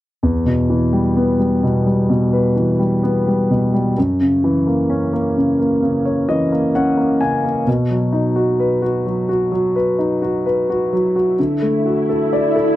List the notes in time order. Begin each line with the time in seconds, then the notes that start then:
0.23 E2
0.46 B2
0.70 E3
0.93 G3
1.16 B3
1.39 G3
1.63 B2
1.86 G3
2.09 B2
2.33 B4
2.56 E3
2.79 G3
3.03 B3
3.27 G3
3.51 B2
3.74 G3
3.98 F#2
4.21 C#3
4.44 E3
4.67 A#3
4.90 C#4
5.13 A#3
5.36 C#3
5.59 A#3
5.83 C#3
6.05 C#5
6.29 E3 D#5
6.52 A#3
6.75 C#4 F#5
6.97 A#3
7.21 C#3 G#5
7.44 A#3
7.67 B2, swell
7.90 F#3
8.13 D#4
8.36 F#4
8.60 B4
8.82 F#4
9.06 F#3
9.29 F#4
9.52 F#3
9.76 B4
9.99 D#4
10.22 F#4
10.46 B4
10.70 F#4
10.93 F#3
11.16 F#4
11.39 D3
11.62 A3
11.86 F#4
12.09 A4
12.33 D5
12.56 A4